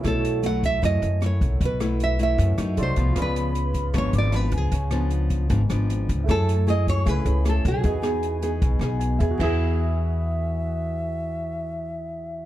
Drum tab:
CC |--------|--------|--------|--------|
HH |xxxxxxxx|xxxxxxxx|xxxxxxxx|xxxxxxxx|
SD |r---r-r-|-r---r--|r---r-r-|-r---r--|
BD |o--oo--o|o---o--o|o--oo--o|o--oo--o|

CC |--------|--------|x-------|--------|
HH |xxxxxxxx|xxxxxxxx|--------|--------|
SD |r---r-r-|-r---r--|--------|--------|
BD |o--oo--o|o---o--o|o-------|--------|